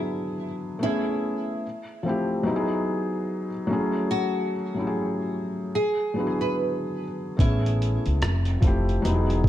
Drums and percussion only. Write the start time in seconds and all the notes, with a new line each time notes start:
7.39 kick, closed hi-hat
7.66 closed hi-hat
7.82 closed hi-hat
8.06 closed hi-hat
8.22 cross-stick, closed hi-hat
8.45 closed hi-hat
8.62 kick, closed hi-hat
8.89 closed hi-hat
9.05 closed hi-hat
9.30 closed hi-hat
9.44 kick